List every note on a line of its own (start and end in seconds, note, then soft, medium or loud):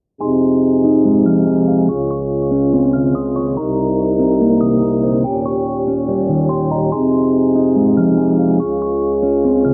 0.21 1.87 F2 medium
0.21 1.87 C3 medium
0.21 1.87 D#4 medium
0.21 1.87 G#4 medium
0.21 1.46 G#5 medium
0.21 1.22 C6 medium
0.84 1.89 D#4 medium
1.05 1.89 G#3 medium
1.26 1.89 F3 medium
1.26 1.85 F6 medium
1.47 1.88 G#5 medium
1.68 1.89 F5 medium
1.89 3.55 C#2 medium
1.89 3.55 C#3 medium
1.89 3.55 F4 medium
1.89 3.55 G#4 medium
1.89 3.14 C#6 loud
2.11 2.90 C#6 medium
2.51 3.56 C#4 medium
2.73 3.57 C4 medium
2.93 3.57 C#3 medium
2.93 3.13 F6 medium
3.15 3.56 C6 loud
3.15 3.35 D#6 medium
3.36 3.57 C#5 medium
3.36 3.56 C#6 medium
3.56 5.23 C2 medium
3.56 5.23 C3 medium
3.56 5.23 D#4 medium
3.56 5.23 A#4 medium
3.56 4.81 A#5 loud
3.56 4.58 A#5 medium
4.19 5.24 C4 medium
4.41 5.24 A#3 medium
4.61 5.24 C3 medium
4.61 5.20 D#6 medium
4.82 5.24 A#5 medium
5.03 5.24 C5 medium
5.24 6.91 D#2 medium
5.24 6.91 A#2 medium
5.24 6.91 C#4 medium
5.24 6.91 G4 medium
5.24 6.49 G5 loud
5.46 6.46 C#6 medium
5.88 6.92 C#4 medium
6.09 6.92 G3 medium
6.29 6.92 D#3 medium
6.49 6.91 G5 loud
6.49 6.70 C6 medium
6.71 6.92 D#5 medium
6.71 6.91 A#5 medium
6.92 8.58 F2 medium
6.92 8.58 C3 medium
6.92 8.58 D#4 medium
6.92 8.58 G#4 medium
6.92 8.17 G#5 medium
6.92 7.93 C6 medium
7.55 8.60 D#4 medium
7.76 8.60 G#3 medium
7.97 8.60 F3 medium
7.97 8.56 F6 medium
8.18 8.59 G#5 medium
8.39 8.60 F5 medium
8.60 9.74 C#2 medium
8.60 9.74 C#3 medium
8.60 9.74 F4 medium
8.60 9.74 G#4 medium
8.60 9.74 C#6 loud
8.82 9.61 C#6 medium
9.23 9.74 C#4 medium
9.45 9.74 C4 medium
9.65 9.74 C#3 medium
9.65 9.74 F6 medium